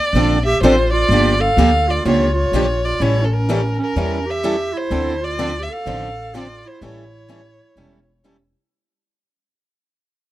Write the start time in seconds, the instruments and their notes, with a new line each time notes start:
Already playing: violin D5
0.13 upright bass A#1, steel-string acoustic guitar D3 F3 C4 D4 A4
0.45 clarinet G4, violin E5
0.61 upright bass A1, steel-string acoustic guitar D3 F3 C4 D4 A4, clarinet F4, violin C5
0.92 clarinet F4, violin D5
1.09 upright bass G1, steel-string acoustic guitar D3 F3 A#3 D4
1.13 steel-string acoustic guitar G4
1.40 clarinet A4, violin F5
1.57 upright bass D2, steel-string acoustic guitar D3 F3 A#3 D4 G4
1.88 clarinet F4, violin D5
2.05 upright bass C#2, steel-string acoustic guitar D3 F3 A#3 D4 G4, clarinet F4, violin C#5
2.33 clarinet F4
2.38 violin C#5
2.52 upright bass A#1, steel-string acoustic guitar D3 F3 A#3 D4 G4
2.83 clarinet F4, violin D5
3.00 upright bass A1, steel-string acoustic guitar E3 G3 C#4 E4 A4, clarinet E4, violin C#5
3.22 clarinet C#4, violin A4
3.32 clarinet C#4, violin A#4
3.49 steel-string acoustic guitar E3 G3 C#4 E4 A4
3.79 clarinet C#4
3.83 violin A#4
3.96 upright bass E2, steel-string acoustic guitar E3 G3 C#4 E4 A4
4.26 clarinet G4
4.30 violin E5
4.44 steel-string acoustic guitar E3 G3 C#4 E4 A4
4.73 clarinet E4
4.78 violin C5
4.91 upright bass D2, steel-string acoustic guitar D3 F3 C4 D4 A4
5.21 clarinet F4, violin D5
5.39 steel-string acoustic guitar D3 F3 C4 D4 A4
5.60 clarinet G4, violin E5
5.70 clarinet A4, violin F5
5.86 upright bass A1, steel-string acoustic guitar D3 F3 C4 D4 A4
6.34 steel-string acoustic guitar D3 F3 C4 D4 A4, clarinet F4, violin D5
6.66 clarinet E4, violin C5
6.81 upright bass A1, steel-string acoustic guitar E3 G3 C#4 E4 A4, clarinet E4, violin C#5
7.28 steel-string acoustic guitar E3 G3 C#4 E4 A4
7.76 upright bass E1, steel-string acoustic guitar E3 G3 C#4 E4 A4
8.24 steel-string acoustic guitar E3 G3 C#4 E4 A4